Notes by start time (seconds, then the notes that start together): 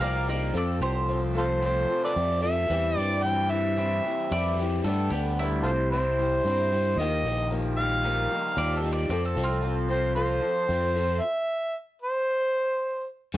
Already playing: F3 D#4 F5
0.00 C2 F3 A#3 D#4 A#4 D5
0.04 G4
0.27 F3 A#3 D#4 G4 A#4 D5
0.54 F2 F3 C4 F4 A4 D5
0.80 C2 C3 C4 F4 G4 A4 C5
1.08 F3 C4 F4 A4
1.34 A3 C4 F4 A4 C5
1.61 F3 C4 F4 A4
1.66 C5
1.88 F3 C4 F4 A4
2.04 A4 B4 D5
2.16 F2 F3 A3 C4 F4 A4
2.42 F3 C4 F4 A4 E5
2.69 E2 E3 G3 C4 E4 G4
2.96 G2 G3 C4 E4 G4 D5
3.23 E3 G3 C4 E4 G5
3.28 G4
3.50 G3 C4 E4 G4 E5
3.77 E3 G3 C4 E4 G4
4.05 E3 C4 E4 G4
4.31 F2 G3 C4 E4 G4 D5
4.59 E3 C4 E4 G4
4.84 G2 D3 G3 A3 B3 D4 G4 A4
5.10 D2 B3 D4 G4
5.15 A3 B3
5.39 G3 A3 B3 D4 E4
5.43 G4
5.63 C2 C3 F4 G4 A4 C5
5.68 C4 E4
5.91 C3 G3 C4 E4 C5
5.95 E4 G4
6.19 G3 C4 E4 G4
6.44 G2 G3 C4 E4 G4
6.72 G3 C4 E4 G4
6.96 D#2 D#3 F3 D#5
7.00 A#3 D#4 G4
7.23 A#1 F3 G4
7.28 A#3 D#4
7.50 F3 A#3 D#4 G4
7.77 G3 D#4 G4 F5
7.81 A#3
8.03 D#3 F3 A#3 D#4 G4
8.30 F3 A#3 D#4 G4
8.56 D#2 F3 G3 A#3 D#4 G4 D5
8.77 A4
8.82 F3 A#3 D#4 G4
8.93 D5
9.09 F2 F3 C4 F4 A4 D5
9.25 A4
9.35 C2 C4 F4 A4
9.43 C4 F4
9.61 F3 C4 F4 A4
9.89 C4 F4 A4 C5
10.15 F3 C4 F4 A4 C5
10.42 F3 C4 F4 A4
10.68 F2 F3 C4 F4 A4
10.95 F3 C4 F4 A4
11.21 E5
12.02 C5
13.34 G2 G3